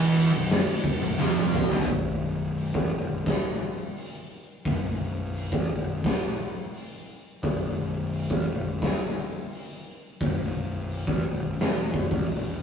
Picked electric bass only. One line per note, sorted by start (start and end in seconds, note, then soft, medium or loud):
0.00 0.29 E1 loud
0.33 0.65 B0 medium
1.03 1.18 B0 medium
1.20 1.68 F1 loud
1.71 1.87 B0 loud
1.88 2.71 B0 loud
2.74 2.91 A1 medium
2.93 3.25 B0 medium
4.66 5.49 B0 medium
5.52 5.68 A1 loud
5.70 6.03 B0 medium
7.43 8.26 B0 loud
8.30 8.46 A1 medium
8.47 8.80 B0 medium
10.21 11.04 B0 loud
11.08 11.24 A1 medium
11.26 11.58 B0 medium
11.60 11.93 E1 medium
11.94 12.10 B0 medium
12.11 12.28 A1 medium
12.28 12.61 E1 medium